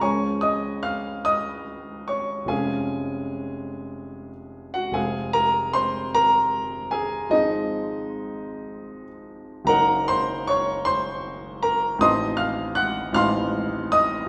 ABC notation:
X:1
M:12/8
L:1/16
Q:3/8=50
K:Fphr
V:1 name="Grand piano"
[dad']2 [ee']2 [ff']2 [ee']4 [dd']2 [Afa]8- [Afa] z2 [Gg] | [Afa]2 [Bb]2 [cc']2 [Bb]4 [Aa]2 [Ee]8- [Ee] z3 | [Bgb]2 [cc']2 [dd']2 [cc']4 [Bb]2 [ec'e']2 [ff']2 [gg']2 [fc'f']4 [ee']2 |]
V:2 name="Grand piano" clef=bass
[D,,F,A,D]12 [F,,,F,A,D]12 | [F,,,F,A,C]12 [A,,,F,A,C]12 | [G,,,G,B,E]12 [=A,,,F,CE]6 [A,,,F,CE]6 |]